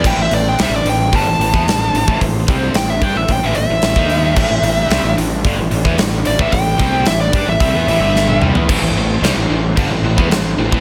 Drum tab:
CC |x---------------|----------------|x---------------|----------------|
HH |--o-o-o-o-o-o-o-|o-o-o-o-o-o-o-o-|--o-o-o-o-o-o-o-|o-o-o-o-o-o-----|
SD |----o-------o---|----o-------o---|----o-------o---|----o-------o---|
T1 |----------------|----------------|----------------|-------------o--|
T2 |----------------|----------------|----------------|--------------o-|
FT |----------------|----------------|----------------|---------------o|
BD |o-------o--o---o|o-o---o-o----o--|o-------o--o---o|o-o---o-o-------|

CC |x---x---x---x---|
HH |----------------|
SD |----o-------o---|
T1 |----------------|
T2 |----------------|
FT |----------------|
BD |o-------o--o---o|